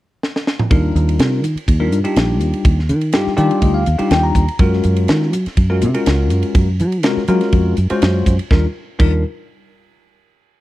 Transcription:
0.23 snare
0.36 snare
0.47 snare
0.59 mid tom
0.71 fingered electric bass D#2, tine electric piano G3 D4 D#4 F4 A#4, kick, ride
0.95 fingered electric bass D#2, hi-hat pedal, ride
1.09 ride
1.19 fingered electric bass C3, snare, ride
1.44 fingered electric bass D#3, hi-hat pedal, ride
1.56 muted fingered electric bass stroke, ride
1.68 fingered electric bass D#2, kick, ride
1.80 tine electric piano G3 D4 D#4 F4 A#4
1.92 fingered electric bass G2, hi-hat pedal, ride
2.04 tine electric piano G3 D4 D#4 F4 G4, ride
2.16 fingered electric bass A#1, snare, ride
2.40 fingered electric bass D#2, hi-hat pedal, ride
2.53 ride
2.65 fingered electric bass D#2, kick, ride
2.79 snare
2.89 fingered electric bass D#3, hi-hat pedal, ride
3.01 ride
3.13 fingered electric bass G2, tine electric piano G3 D4 D#4 F4 G4, snare, ride
3.27 muted fingered electric bass stroke, snare
3.37 fingered electric bass D#3, tine electric piano G3 D4 D#4 F4 G4 D5, hi-hat pedal, ride
3.51 ride
3.62 fingered electric bass D2, tine electric piano D#5, kick, ride
3.74 tine electric piano F5
3.86 fingered electric bass D#2, hi-hat pedal, ride
3.99 tine electric piano G3 D4 D#4 F4 G4, muted fingered electric bass stroke, ride
4.11 fingered electric bass D#2, tine electric piano G5, snare, ride
4.23 tine electric piano A#5
4.35 fingered electric bass D#2, kick, hi-hat pedal, ride
4.48 ride
4.59 fingered electric bass F#2, tine electric piano G#3 C#4 F4 F#4 A#4, kick, ride
4.73 snare
4.83 fingered electric bass F#2, hi-hat pedal, ride
4.96 ride
5.08 fingered electric bass D#3, snare, ride
5.22 snare
5.33 fingered electric bass F#3, hi-hat pedal, ride
5.46 muted fingered electric bass stroke, snare, ride
5.57 fingered electric bass F#2, kick, ride
5.70 tine electric piano G#3 C#4 F4 F#4 A#4
5.82 fingered electric bass C3, hi-hat pedal, ride
5.94 tine electric piano G#3 C#4 F4 F#4 A#4, ride
6.06 fingered electric bass C#2, snare, ride
6.30 fingered electric bass F#2, hi-hat pedal, ride
6.43 ride
6.55 fingered electric bass F#2, kick, ride
6.80 fingered electric bass F#3, hi-hat pedal, ride
6.92 ride
7.03 fingered electric bass C3, tine electric piano G#3 C#4 F4 F#4 A#4, snare, ride
7.17 muted fingered electric bass stroke, snare
7.28 fingered electric bass F#3, tine electric piano G#3 C#4 F4 F#4 A#4, hi-hat pedal, ride
7.41 snare, ride
7.52 fingered electric bass F2, kick, ride
7.77 fingered electric bass F#2, hi-hat pedal, ride
7.90 tine electric piano G#3 C#4 F4 F#4 C5, muted fingered electric bass stroke, ride
8.02 fingered electric bass F#2, snare, ride
8.26 fingered electric bass F#2, kick, hi-hat pedal, ride
8.39 ride
8.51 fingered electric bass D#2, tine electric piano G3 D4 D#4 F4 A#4, kick, snare
8.99 fingered electric bass D#2, tine electric piano G3 D4 D#4 F4 A#4, kick, crash

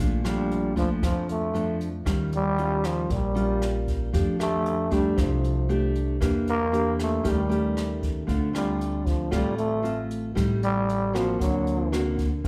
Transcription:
0.00 upright bass A#1, nylon-string guitar A#2 F3 A3 D4
0.24 nylon-string guitar F3 A3 D4, trombone G3, cross-stick, closed hi-hat
0.51 closed hi-hat
0.76 nylon-string guitar F3 A3 D4, trombone F3, kick, closed hi-hat
1.03 upright bass F2, nylon-string guitar F2, trombone F3, kick, cross-stick, closed hi-hat
1.29 trombone A3, closed hi-hat
1.54 nylon-string guitar F3 A3 D4, closed hi-hat
1.81 closed hi-hat
2.05 upright bass D#2, nylon-string guitar D#3 G3 C#4 F4, kick, cross-stick, closed hi-hat
2.32 trombone G3, closed hi-hat
2.58 nylon-string guitar G3 C#4 F4, closed hi-hat
2.84 trombone F3, cross-stick, closed hi-hat
3.10 upright bass A#1, nylon-string guitar A#2, trombone G3, kick, closed hi-hat
3.35 nylon-string guitar G3 C#4 F4, closed hi-hat
3.62 cross-stick, closed hi-hat
3.88 kick, closed hi-hat
4.13 upright bass F2, nylon-string guitar F3 A3 D4 G4, kick, closed hi-hat
4.39 nylon-string guitar A3 D4 G4, trombone A3, cross-stick, closed hi-hat
4.66 closed hi-hat
4.91 trombone G3, nylon-string guitar A3 D4 G4, kick, closed hi-hat
5.17 upright bass C2, nylon-string guitar C3, trombone F3, kick, cross-stick, closed hi-hat
5.44 closed hi-hat
5.69 nylon-string guitar A3 D4 G4, closed hi-hat
5.95 closed hi-hat
6.21 upright bass E2, nylon-string guitar E3 A#3 D4 G4, kick, cross-stick, closed hi-hat
6.47 trombone A#3, closed hi-hat
6.72 nylon-string guitar A#3 D4 G4, closed hi-hat
6.99 trombone A3, cross-stick, closed hi-hat
7.23 upright bass D#2, nylon-string guitar D#3 A3 C#4 G4, kick, closed hi-hat
7.30 trombone G3
7.49 nylon-string guitar A3 C#4 G4, closed hi-hat
7.77 cross-stick, closed hi-hat
8.03 kick, closed hi-hat
8.27 upright bass D2, nylon-string guitar D3 A3 C4 F4, kick, closed hi-hat
8.53 trombone G3, nylon-string guitar A3 C4 F4, cross-stick, closed hi-hat
8.81 closed hi-hat
9.07 trombone F3, kick, closed hi-hat
9.31 upright bass A1, nylon-string guitar A2 A3 C4 F4, trombone G3, kick, cross-stick, closed hi-hat
9.57 trombone A3, closed hi-hat
9.83 nylon-string guitar A3 C4 F4, closed hi-hat
10.11 closed hi-hat
10.35 upright bass A1, nylon-string guitar A2 G3 C4 D#4, kick, cross-stick, closed hi-hat
10.63 trombone G3, closed hi-hat
10.89 closed hi-hat
11.13 trombone F3, nylon-string guitar A#3 C4 F#4, cross-stick, closed hi-hat
11.39 upright bass D2, nylon-string guitar D3, trombone F#3, kick, closed hi-hat
11.67 closed hi-hat
11.92 nylon-string guitar A#3 C4 F#4, cross-stick, closed hi-hat
12.19 kick, closed hi-hat
12.44 upright bass G1, nylon-string guitar G2, kick

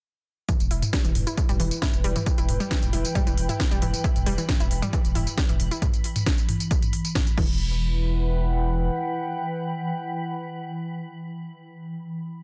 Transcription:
0.49 synth arpeggio sound E3, synth drone E3, ambient pad E4, kick, closed hi-hat, mid tom, tambourine
0.60 sub bass E1, closed hi-hat, tambourine
0.65 ambient pad B4
0.71 sub bass E1, synth arpeggio sound E4, open hi-hat
0.82 closed hi-hat, mid tom, tambourine
0.93 synth arpeggio sound G3, kick, snare, closed hi-hat, tambourine
1.05 sub bass E1, synth arpeggio sound E3, closed hi-hat, tambourine
1.15 sub bass E1, mid tom, open hi-hat
1.27 synth arpeggio sound E4, closed hi-hat, tambourine
1.37 kick, closed hi-hat, tambourine
1.49 sub bass E1, synth arpeggio sound G3, closed hi-hat, mid tom, tambourine
1.60 sub bass E1, synth arpeggio sound E3, open hi-hat
1.64 ambient pad G5
1.71 closed hi-hat, tambourine
1.82 synth arpeggio sound E4, kick, snare, closed hi-hat, mid tom, tambourine
1.94 sub bass E1, closed hi-hat, tambourine
2.04 sub bass E1, synth arpeggio sound G3, open hi-hat
2.16 synth arpeggio sound E3, closed hi-hat, mid tom, tambourine
2.26 kick, closed hi-hat, tambourine
2.38 sub bass E1, synth arpeggio sound E4, closed hi-hat, tambourine
2.49 sub bass E1, mid tom, open hi-hat
2.60 synth arpeggio sound G3, closed hi-hat, tambourine
2.71 synth arpeggio sound E3, kick, snare, closed hi-hat, tambourine
2.82 sub bass E1, closed hi-hat, mid tom, tambourine
2.93 sub bass E1, synth arpeggio sound E4, open hi-hat
3.05 closed hi-hat, tambourine
3.15 synth arpeggio sound G3, kick, closed hi-hat, mid tom, tambourine
3.27 sub bass E1, synth arpeggio sound E3, closed hi-hat, tambourine
3.37 sub bass E1, open hi-hat
3.49 synth arpeggio sound E4, closed hi-hat, mid tom, tambourine
3.60 kick, snare, closed hi-hat, tambourine
3.71 sub bass E1, synth arpeggio sound G3, closed hi-hat, tambourine
3.82 sub bass E1, synth arpeggio sound E3, mid tom, open hi-hat
3.94 closed hi-hat, tambourine
4.04 synth arpeggio sound E4, kick, closed hi-hat, tambourine
4.16 sub bass E1, closed hi-hat, mid tom, tambourine
4.26 sub bass E1, synth arpeggio sound G3, open hi-hat
4.38 synth arpeggio sound E3, closed hi-hat, tambourine
4.49 kick, snare, closed hi-hat, mid tom, tambourine
4.60 sub bass E1, synth arpeggio sound E4, closed hi-hat, tambourine
4.71 sub bass E1, open hi-hat
4.82 synth arpeggio sound G3, closed hi-hat, mid tom, tambourine
4.93 synth arpeggio sound E3, kick, closed hi-hat, tambourine
5.05 sub bass E1, closed hi-hat, tambourine
5.15 sub bass E1, synth arpeggio sound E4, mid tom, open hi-hat
5.27 closed hi-hat, tambourine
5.38 synth arpeggio sound G3, kick, snare, closed hi-hat, tambourine
5.49 sub bass E1, synth arpeggio sound E3, closed hi-hat, mid tom, tambourine
5.60 sub bass E1, open hi-hat
5.71 synth arpeggio sound E4, closed hi-hat, tambourine
5.82 kick, closed hi-hat, mid tom, tambourine
5.94 closed hi-hat, tambourine
6.04 open hi-hat
6.16 closed hi-hat, mid tom, tambourine
6.26 kick, snare, closed hi-hat, tambourine
6.38 closed hi-hat, tambourine
6.49 mid tom, open hi-hat
6.60 closed hi-hat, tambourine
6.71 kick, closed hi-hat, tambourine
6.82 closed hi-hat, mid tom, tambourine
6.93 open hi-hat
7.05 closed hi-hat, tambourine
7.15 kick, snare, closed hi-hat, mid tom, tambourine
7.27 closed hi-hat, tambourine
7.37 sub bass E1, synth arpeggio sound E3, synth drone E3, ambient pad E4, kick, crash
7.44 ambient pad B4
7.74 ambient pad F#5
7.80 ambient pad G5

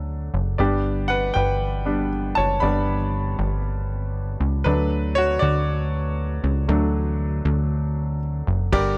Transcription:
Already playing: analog synth bass D2, grand piano F#3 A3 D4
0.34 analog synth bass F#1
0.58 analog synth bass G1, grand piano G3 B3 D4 G4 D5
1.08 grand piano B4 F#5
1.34 analog synth bass G1, grand piano B4 G5
1.85 grand piano G3 B3 D4
2.35 analog synth bass F#1, grand piano C#5 A5
2.60 analog synth bass G1, grand piano G3 B3 D4 D5 B5
3.39 analog synth bass G1
4.40 analog synth bass C#2
4.64 analog synth bass D2, grand piano F#3 A3 D4 B4
5.15 grand piano F#4 C#5
5.39 analog synth bass D2, grand piano F#4 D5
6.44 analog synth bass C#2
6.68 analog synth bass D2, grand piano F#3 A3 D4
7.45 analog synth bass D2
8.47 analog synth bass F#1
8.72 analog synth bass G1, grand piano G2 D3 G4 A#4 D5, kick, crash

